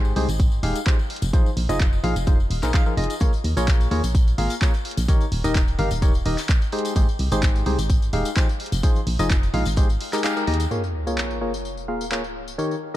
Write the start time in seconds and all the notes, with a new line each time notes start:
Already playing: G#1 G#3 D#4 G4 G#4 C5
0.05 tambourine
0.16 C2 G#3 D#4 G4 G#4 C5, open hi-hat
0.29 G#1, closed hi-hat, tambourine
0.40 kick, closed hi-hat, tambourine
0.52 tambourine
0.63 D#1 G#3 D#4 G4 G#4 F5, open hi-hat
0.76 closed hi-hat, tambourine
0.86 F3 D#4 G4 G#4 C5, kick, clap, tambourine
0.99 tambourine
1.10 open hi-hat
1.16 closed hi-hat
1.22 F1, closed hi-hat, tambourine
1.33 F3 D#4 F4 G#4 C5, kick, closed hi-hat, tambourine
1.46 tambourine
1.57 A#1, open hi-hat
1.69 F1 F3 D#4 F4 G#4 D#5, closed hi-hat, tambourine
1.80 kick, clap, closed hi-hat, tambourine
1.93 tambourine
2.04 A#1 F3 D#4 F4 G#4 F5, open hi-hat
2.16 F1, closed hi-hat, tambourine
2.27 F3 D#4 F4 G#4 C5, kick, closed hi-hat, tambourine
2.40 tambourine
2.50 D#1, open hi-hat
2.63 A#1 F3 D#4 F4 G#4 A#4, clap, closed hi-hat, tambourine
2.74 F3 D#4 F4 G#4 F5, kick, clap, tambourine
2.86 F3 D#4 F4 G#4 A#4, tambourine
2.97 F1 D#4 F4 G#4 D#5, open hi-hat
3.04 closed hi-hat
3.10 closed hi-hat, tambourine
3.20 A#1 A#3 F4 G#4 A#4 C#5, kick, closed hi-hat, tambourine
3.33 tambourine
3.44 D#2, open hi-hat
3.57 A#1 A#3 F4 G#4 A#4 C#5, closed hi-hat, tambourine
3.67 kick, clap, closed hi-hat, tambourine
3.80 tambourine
3.91 D#2 A#3 F4 G#4 A#4 C#5, open hi-hat
4.04 A#1, closed hi-hat, tambourine
4.15 kick, closed hi-hat, tambourine
4.28 tambourine
4.38 G#1 A#3 F4 G#4 A#4 F5, open hi-hat
4.50 closed hi-hat, tambourine
4.61 A#3 F4 G#4 A#4 C#5, kick, clap, tambourine
4.74 tambourine
4.85 open hi-hat
4.91 closed hi-hat
4.97 A#1, closed hi-hat, tambourine
5.08 D#3 D#4 G4 A#4 C#5, kick, closed hi-hat, tambourine
5.21 tambourine
5.32 D#1, open hi-hat
5.44 D#1 D#3 D#4 G4 A#4 D#5, closed hi-hat, tambourine
5.55 kick, clap, closed hi-hat, tambourine
5.68 tambourine
5.79 G1 D#3 D#4 G4 A#4 F5, open hi-hat
5.91 D#1, closed hi-hat, tambourine
6.02 D#3 D#4 G4 A#4 C#5, kick, closed hi-hat, tambourine
6.14 tambourine
6.26 D#1 D#3 D#4 G4 A#4 D#5, open hi-hat
6.38 clap, closed hi-hat, tambourine
6.49 kick, clap, tambourine
6.62 tambourine
6.72 G#3 D#4 G4 G#4 C5, open hi-hat
6.79 closed hi-hat
6.85 closed hi-hat, tambourine
6.96 G#1 G#3 D#4 G4 G#4 C5, kick, closed hi-hat, tambourine
7.09 tambourine
7.19 C2, open hi-hat
7.32 G#1 G#3 D#4 G4 G#4 C5, closed hi-hat, tambourine
7.42 kick, clap, closed hi-hat, tambourine
7.55 tambourine
7.66 C2 G#3 D#4 G4 G#4 C5, open hi-hat
7.79 G#1, closed hi-hat, tambourine
7.90 kick, closed hi-hat, tambourine
8.02 tambourine
8.13 D#1 G#3 D#4 G4 G#4 F5, open hi-hat
8.25 closed hi-hat, tambourine
8.37 F3 D#4 G4 G#4 C5, kick, clap, tambourine
8.49 tambourine
8.60 open hi-hat
8.66 closed hi-hat
8.72 F1, closed hi-hat, tambourine
8.83 F3 D#4 F4 G#4 C5, kick, closed hi-hat, tambourine
8.95 tambourine
9.07 A#1, open hi-hat
9.19 F1 F3 D#4 F4 G#4 D#5, closed hi-hat, tambourine
9.30 kick, clap, closed hi-hat, tambourine
9.43 tambourine
9.54 A#1 G#3 D#4 F4 G#4 F5, open hi-hat
9.65 G#1, closed hi-hat, tambourine
9.76 G#3 D#4 G4 G#4 C5, kick, closed hi-hat, tambourine
9.89 tambourine
10.01 open hi-hat
10.13 G#3 D#4 G4 G#4 A#4, clap, closed hi-hat, tambourine
10.24 G#3 D#4 G4 G#4 F5, clap, tambourine
10.37 G#3 D#4 G4 G#4 A#4, tambourine
10.47 D#2 D#4 G4 G#4 D#5, open hi-hat
10.54 closed hi-hat
10.60 closed hi-hat, tambourine
10.71 A#3 F4 G#4 A#4 C#5, tambourine, sub drop
10.84 tambourine
11.07 A#3 F4 G#4 A#4 C#5, tambourine
11.18 clap, tambourine
11.31 tambourine
11.41 A#3 F4 G#4 A#4 C#5
11.54 tambourine
11.65 tambourine
11.77 tambourine
11.88 A#3 F4 G#4 A#4 F5
12.01 tambourine
12.12 A#3 F4 G#4 A#4 C#5, clap, tambourine
12.24 tambourine
12.48 tambourine
12.58 D#3 D#4 G4 A#4 C#5, tambourine
12.71 tambourine